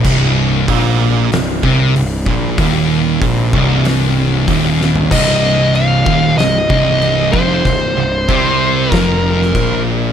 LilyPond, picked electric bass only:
\new Staff \with { instrumentName = "Picked electric bass" } { \clef bass \time 4/4 \key c \minor \tempo 4 = 95 c,,4 bes,,4 c,,8 c,8 c,,8 bes,,8 | ees,,4 bes,,8 c,,4. ees,,4 | c,,4. ees,,8 c,,8 c,,4 f,,8 | c,,8 c,,8 c,4 f,,4 bes,,4 | }